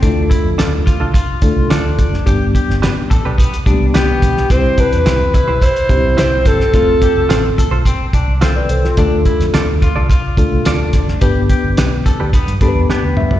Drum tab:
HH |x-x-x-x-x-x-x-x-|x-x-x-x-xxx-x-x-|x-xxx-x-xxx-x-x-|x-x-x-x-x-x-x-x-|
SD |----o-------o--o|---oo-------o--o|----o-------o-oo|----o-------o--o|
T2 |----------------|----------------|----------------|----------------|
FT |----------------|----------------|----------------|----------------|
BD |o-o---o-o-o---o-|o-o---o-o-o---o-|o-o---o-o-o---o-|o-o---o-o-o-----|

HH |x-xxx-x-x-x-x-x-|x-x-x-x-xxx-----|
SD |---oo-------o-oo|----o-------o---|
T2 |----------------|--------------o-|
FT |----------------|---------------o|
BD |o-o---o-o-o---o-|o-o---o-o-o-----|